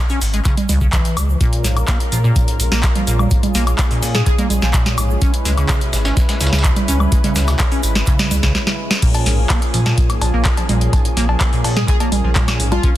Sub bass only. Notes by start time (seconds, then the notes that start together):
0.21 G#1
0.69 C#2
0.81 C#2
1.17 C#2
1.64 A#1
2.12 A#2
2.60 A#1
2.72 A#1
3.07 A#1
3.55 A#1
4.03 A#2
4.50 A#1
4.62 A#1
4.98 A#1
5.45 C#2
5.93 G#1
6.41 C#2
6.53 C#2
6.88 C#2
7.36 C#2
7.83 G#1
8.31 C#2
8.43 C#2
9.26 A#1
9.74 A#2
10.22 A#1
10.34 A#1
10.69 A#1
11.17 A#1
11.64 A#2
12.12 A#1
12.24 A#1
12.60 A#1